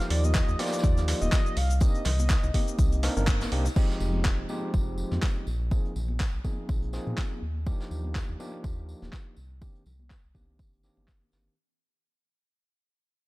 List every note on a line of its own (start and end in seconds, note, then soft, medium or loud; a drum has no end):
0.00 0.56 F3 loud
0.00 0.57 A#3 medium
0.00 0.57 D#4 medium
0.00 0.57 F4 medium
0.00 0.57 G4 loud
0.00 snare soft
0.10 0.41 D#2 loud
0.10 0.26 D5 loud
0.10 open hi-hat loud
0.10 tambourine medium
0.10 low conga medium
0.24 0.61 D#5 loud
0.24 high conga medium
0.24 cabasa medium
0.35 kick loud
0.35 snare loud
0.35 clap loud
0.35 tambourine medium
0.35 cabasa medium
0.48 0.55 D#2 medium
0.48 cabasa soft
0.59 1.55 F3 medium
0.59 1.55 A#3 medium
0.59 1.56 D#4 medium
0.59 1.55 F4 medium
0.59 1.56 G4 loud
0.59 1.21 D5 loud
0.59 snare medium
0.59 open hi-hat medium
0.59 tambourine medium
0.59 high bongo medium
0.59 high conga medium
0.66 snare medium
0.66 tambourine medium
0.72 snare medium
0.72 tambourine medium
0.72 cabasa medium
0.78 snare medium
0.78 tambourine medium
0.83 1.14 D#2 medium
0.83 kick loud
0.83 tambourine medium
0.83 cabasa medium
0.97 snare soft
0.97 high bongo soft
0.97 cabasa soft
1.08 snare loud
1.08 open hi-hat loud
1.08 tambourine medium
1.22 1.28 D#1 medium
1.22 1.58 D#5 loud
1.22 high bongo medium
1.22 high conga medium
1.22 low conga medium
1.22 cabasa medium
1.32 kick loud
1.32 snare loud
1.32 clap loud
1.32 tambourine medium
1.32 cabasa medium
1.46 cabasa soft
1.57 1.87 C2 loud
1.57 1.81 F5 loud
1.57 open hi-hat medium
1.57 tambourine medium
1.57 high bongo medium
1.70 cabasa medium
1.81 2.02 A#3 medium
1.81 2.02 C4 medium
1.81 2.02 D4 medium
1.81 2.02 D#4 medium
1.81 2.02 G4 medium
1.81 3.23 D#5 loud
1.81 kick loud
1.81 tambourine medium
1.81 high bongo medium
1.81 cabasa medium
1.95 closed hi-hat soft
1.95 cabasa soft
2.05 2.36 C2 loud
2.05 snare loud
2.05 open hi-hat loud
2.05 tambourine medium
2.05 low conga medium
2.19 high bongo medium
2.19 high conga medium
2.19 cabasa medium
2.30 kick loud
2.30 snare loud
2.30 clap loud
2.30 tambourine medium
2.30 cabasa medium
2.43 2.50 C2 medium
2.43 high bongo medium
2.43 cabasa soft
2.54 3.00 A#3 medium
2.54 3.00 C4 medium
2.54 3.01 D#4 medium
2.54 3.01 G4 medium
2.54 kick medium
2.54 open hi-hat loud
2.54 tambourine medium
2.54 high conga medium
2.68 cabasa medium
2.79 3.09 C2 medium
2.79 kick loud
2.79 tambourine medium
2.79 high bongo medium
2.79 cabasa medium
2.92 closed hi-hat soft
2.92 cabasa soft
3.03 3.13 A#3 medium
3.03 3.13 C4 medium
3.03 3.13 D4 medium
3.03 3.13 D#4 medium
3.03 3.13 A#4 loud
3.03 snare loud
3.03 open hi-hat loud
3.03 tambourine medium
3.03 high bongo medium
3.17 3.46 G1 medium
3.17 3.49 A#3 medium
3.17 3.49 C4 medium
3.17 3.49 D4 medium
3.17 3.49 D#4 medium
3.17 3.49 A#4 medium
3.17 high conga medium
3.17 low conga medium
3.17 cabasa medium
3.27 kick loud
3.27 clap loud
3.27 tambourine medium
3.27 cabasa medium
3.41 snare loud
3.41 tambourine medium
3.41 high bongo medium
3.41 high conga medium
3.41 cabasa soft
3.52 3.69 C2 medium
3.52 3.66 A#3 medium
3.52 3.66 C4 medium
3.52 3.66 D4 medium
3.52 3.66 D#4 medium
3.52 3.66 G4 medium
3.52 open hi-hat loud
3.65 tambourine medium
3.65 high bongo medium
3.65 cabasa medium
3.76 4.47 F3 medium
3.76 4.47 G#3 medium
3.76 4.47 C4 medium
3.76 4.47 D#4 medium
3.76 4.47 G4 loud
3.76 kick loud
3.76 tambourine medium
3.76 crash medium
3.90 snare soft
4.00 4.31 F1 medium
4.00 tambourine medium
4.00 low conga medium
4.14 high conga medium
4.24 kick loud
4.24 snare loud
4.24 clap loud
4.24 tambourine medium
4.39 4.46 F1 medium
4.49 5.46 F3 medium
4.49 5.46 G#3 medium
4.49 5.46 C4 medium
4.49 5.46 D#4 medium
4.49 5.46 G4 medium
4.49 tambourine medium
4.49 high conga medium
4.74 5.04 F1 medium
4.74 kick loud
4.74 tambourine medium
4.98 tambourine medium
5.11 5.19 F2 medium
5.11 snare soft
5.11 high conga medium
5.11 low conga medium
5.22 kick loud
5.22 snare loud
5.22 clap loud
5.22 tambourine medium
5.47 5.77 A#1 loud
5.47 tambourine medium
5.71 5.92 F3 medium
5.71 5.92 A#3 medium
5.71 5.92 C4 medium
5.71 5.93 D#4 medium
5.71 5.93 G#4 medium
5.71 kick loud
5.71 tambourine medium
5.85 closed hi-hat soft
5.96 6.26 A#1 medium
5.96 tambourine medium
5.96 low conga medium
6.08 high conga medium
6.20 kick loud
6.20 snare loud
6.20 clap loud
6.20 tambourine medium
6.34 6.41 A#1 medium
6.44 6.91 F3 medium
6.44 6.91 A#3 medium
6.44 6.91 C4 medium
6.44 6.91 D#4 medium
6.44 6.91 G#4 medium
6.44 kick medium
6.44 tambourine medium
6.44 high conga medium
6.69 6.99 A#1 medium
6.69 kick loud
6.69 tambourine medium
6.82 closed hi-hat soft
6.93 7.41 F3 medium
6.93 7.41 A#3 medium
6.93 7.41 C4 medium
6.93 7.41 D#4 medium
6.93 7.41 G#4 medium
6.93 snare medium
6.93 tambourine medium
7.07 7.14 A#2 medium
7.07 high conga medium
7.07 low conga medium
7.17 kick loud
7.17 snare loud
7.17 clap loud
7.17 tambourine medium
7.31 high conga medium
7.42 7.72 D#2 medium
7.66 8.37 F3 medium
7.66 8.37 A#3 medium
7.66 8.37 D4 medium
7.66 8.37 D#4 medium
7.66 8.37 G4 loud
7.66 kick loud
7.66 tambourine medium
7.80 snare soft
7.91 8.21 D#2 medium
7.91 tambourine medium
7.91 low conga medium
8.04 high conga medium
8.15 kick loud
8.15 snare loud
8.15 clap loud
8.15 tambourine medium
8.29 8.36 D#2 medium
8.39 9.36 F3 medium
8.39 9.36 A#3 medium
8.39 9.36 D4 medium
8.39 9.36 D#4 medium
8.39 9.36 G4 medium
8.39 tambourine medium
8.39 high conga medium
8.64 8.94 D#2 medium
8.64 kick loud
8.64 tambourine medium
8.89 tambourine medium
9.02 9.09 D#1 medium
9.02 snare soft
9.02 high conga loud
9.02 low conga medium
9.13 kick loud
9.13 snare loud
9.13 clap loud
9.13 tambourine medium
9.37 9.67 C2 medium
9.37 tambourine medium
9.62 9.83 D#3 medium
9.62 9.83 A#3 medium
9.62 9.83 C4 medium
9.62 9.83 D4 medium
9.62 9.83 G4 medium
9.62 kick loud
9.62 tambourine medium
9.75 closed hi-hat soft
9.86 10.16 C2 loud
9.86 tambourine medium
9.86 low conga medium
9.99 high conga medium
10.10 kick loud
10.10 snare loud
10.10 clap loud
10.10 tambourine medium
10.24 10.61 C2 medium
10.35 10.81 D#3 medium
10.35 10.81 A#3 medium
10.35 10.81 C4 medium
10.35 10.81 D4 medium
10.35 10.81 G4 medium
10.35 kick medium
10.35 tambourine medium
10.35 high conga medium
10.59 10.89 G1 medium
10.59 kick loud
10.59 tambourine medium
10.73 closed hi-hat soft
10.83 11.54 D#3 medium
10.83 11.54 A#3 medium
10.83 11.54 C4 medium
10.83 11.54 D4 medium
10.83 11.54 G4 medium
10.83 snare soft
10.83 tambourine medium
10.97 11.26 G1 medium
10.97 high conga medium
10.97 low conga medium
11.08 kick loud
11.08 snare loud
11.08 clap loud
11.08 tambourine medium
11.22 high conga medium
11.32 11.49 G1 medium
11.32 snare medium
11.32 tambourine medium